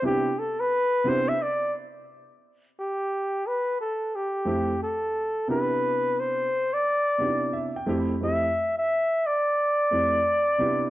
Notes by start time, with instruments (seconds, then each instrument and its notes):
0.02 grand piano C3 B3 D4 E4 G4, flugelhorn G4
0.39 flugelhorn A4
0.60 flugelhorn B4
1.04 grand piano C3 B3 D4 E4 G4
1.09 flugelhorn C5
1.29 flugelhorn E5
1.42 flugelhorn D5
2.80 flugelhorn G4
3.47 flugelhorn B4
3.81 flugelhorn A4
4.15 flugelhorn G4
4.45 grand piano F2 A3 C4 E4 G4
4.83 flugelhorn A4
5.48 grand piano C3 B3 D4 E4 G4, flugelhorn B4
6.20 flugelhorn C5
6.73 flugelhorn D5
7.18 grand piano C3 B3 D4 D#4 G4
7.27 grand piano E4
7.53 grand piano E5
7.76 grand piano G5
7.86 grand piano F2 A3 C4 E4 G4
7.99 grand piano B5
8.20 grand piano F2 A3 C4 E4 G4, flugelhorn E5
8.78 flugelhorn E5
9.26 flugelhorn D5
9.91 grand piano F2 A3 C4 E4 G4
10.58 grand piano C3 B3 D4 E4 G4